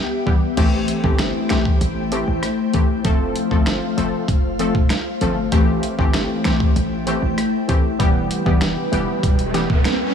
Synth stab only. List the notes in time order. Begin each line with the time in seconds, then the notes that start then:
0.26 E3 G3 B3 G4
0.57 E3 A3 C4 G4
1.03 E3 A3 C4 G4
1.50 E3 A3 C4 G4
2.11 E3 A3 C4 G4
2.73 E3 A3 C4 G4
3.04 F3 A3 C4 A4
3.51 F3 A3 C4 A4
3.97 F3 A3 C4 A4
4.59 F3 A3 C4 A4
5.21 F3 A3 C4 A4
5.52 E3 A3 C4 G4
5.98 E3 A3 C4 G4
6.44 E3 A3 C4 G4
7.06 E3 A3 C4 G4
7.68 E3 A3 C4 G4
7.99 E3 G3 B3 G4
8.45 E3 G3 B3 G4
8.92 E3 G3 B3 G4
9.54 E3 G3 B3 G4